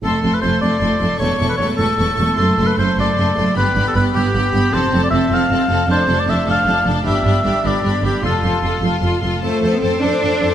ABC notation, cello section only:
X:1
M:6/8
L:1/16
Q:3/8=102
K:Flyd
V:1 name="Cello section" clef=bass
F,,2 F,,2 F,,2 F,,2 F,,2 F,,2 | E,,2 E,,2 E,,2 E,,2 E,,2 E,,2 | ^F,,2 F,,2 F,,2 F,,2 F,,2 F,,2 | G,,2 G,,2 G,,2 G,,2 G,,2 G,,2 |
F,,2 F,,2 F,,2 F,,2 F,,2 F,,2 | F,,2 F,,2 F,,2 F,,2 F,,2 F,,2 | G,,2 G,,2 G,,2 G,,2 G,,2 G,,2 | F,,2 F,,2 F,,2 F,,2 F,,2 F,,2 |
A,3 B, C2 D6 |]